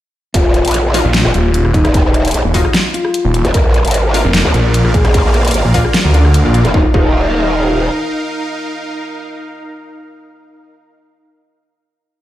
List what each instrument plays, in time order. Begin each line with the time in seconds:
0.34 wobble bass D#1, clean electric guitar F4, kick, closed hi-hat
0.54 closed hi-hat
0.65 wobble bass A#1, closed hi-hat
0.68 closed hi-hat
0.71 closed hi-hat
0.74 closed hi-hat
0.94 synth stab F#3 D#4 F4, clean electric guitar F4, open hi-hat
1.05 detuned saw bass A#1
1.14 snare, closed hi-hat
1.25 wobble bass F#1, cross-stick
1.34 detuned saw bass D#1, clean electric guitar F4, closed hi-hat
1.54 closed hi-hat
1.65 detuned saw bass D#1, cross-stick
1.74 clean electric guitar D#4, kick, closed hi-hat
1.85 wobble bass D#1, cross-stick, closed hi-hat
1.94 kick, closed hi-hat
2.05 wobble bass D#1
2.14 closed hi-hat
2.25 closed hi-hat
2.28 closed hi-hat
2.31 wobble bass A#1, closed hi-hat
2.34 closed hi-hat
2.45 detuned saw bass D#1
2.54 synth stab F#3 D#4 F4, kick, open hi-hat
2.65 cross-stick
2.74 snare, closed hi-hat
2.94 clean electric guitar F4, closed hi-hat
3.05 cross-stick
3.14 closed hi-hat
3.25 detuned saw bass D#1
3.34 closed hi-hat
3.45 wobble bass F#1, closed hi-hat
3.54 wobble bass A#1, supersaw synth A#3 A#4 D5 F5, clean electric guitar A#4, kick, closed hi-hat
3.74 closed hi-hat
3.85 wobble bass G#1, closed hi-hat
3.88 closed hi-hat
3.91 closed hi-hat
3.94 closed hi-hat
4.14 synth stab A#3 D4 F4, clean electric guitar A#4, open hi-hat
4.25 detuned saw bass F1
4.34 snare, closed hi-hat
4.45 wobble bass D2, cross-stick
4.54 detuned saw bass A#1, clean electric guitar A#4, closed hi-hat
4.74 closed hi-hat
4.85 detuned saw bass A#1, cross-stick
4.94 clean electric guitar G#4, kick, closed hi-hat
5.05 wobble bass A#1, cross-stick, closed hi-hat
5.14 kick, closed hi-hat
5.25 wobble bass A#1
5.34 closed hi-hat
5.45 closed hi-hat
5.48 closed hi-hat
5.51 wobble bass G#1, closed hi-hat
5.54 closed hi-hat
5.65 detuned saw bass A#1
5.74 synth stab A#3 D4 F4, kick, open hi-hat
5.85 cross-stick
5.94 snare, closed hi-hat
6.05 detuned saw bass D2
6.14 synth stab A#3 D4 F4, clean electric guitar D4, closed hi-hat
6.25 cross-stick
6.34 closed hi-hat
6.45 detuned saw bass A#1, synth stab A#3 D4 F4
6.54 synth stab A#3 D4 F4, closed hi-hat
6.65 wobble bass F1, closed hi-hat
6.74 wobble bass D#1, synth stab F#3 D#4 F4, clean electric guitar D#4, supersaw synth D#4 A#4 F5, kick
6.94 wobble bass D#1, synth stab F#3 D#4 F4, clean electric guitar D#4, kick